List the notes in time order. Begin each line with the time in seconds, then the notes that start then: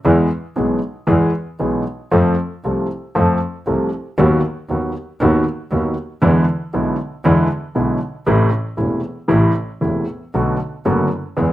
0.05 E2 E3 G#3 B3 G#4
0.56 B1 B2 E3 G#3 B3 G#4
1.07 E2 E3 G#3 B3 G#4
1.59 B1 B2 E3 G#3 B3 G#4
2.11 F2 F3 A3 C4 A4
2.64 C2 C3 F3 A3 C4 A4
3.15 F2 F3 A3 C4 A4
3.66 C2 C3 F3 A3 C4 A4
4.18 D#2 D#3 F#3 B3 F#4
4.69 D#2 D#3 F#3 B3 F#4
5.20 D#2 D#3 F#3 B3 F#4
5.71 D#2 D#3 F#3 B3 F#4
6.22 E2 D3 E3 G#3 B3 E4
6.73 B1 B2 D3 G#3 B3 E4
7.25 E2 D3 E3 G#3 B3 E4
7.75 B1 B2 D3 G#3 B3 E4
8.26 A1 A2 C3 E3 A3 E4
8.77 E1 E2 C3 E3 A3 E4
9.28 A1 A2 C3 E3 A3 E4
9.81 E1 E2 C3 E3 A3 E4
10.34 B1 B2 D3 A3 B3 F#4
10.85 F#1 F#2 D3 A3 B3 F#4
11.37 E2 E3 G#3 B3 G#4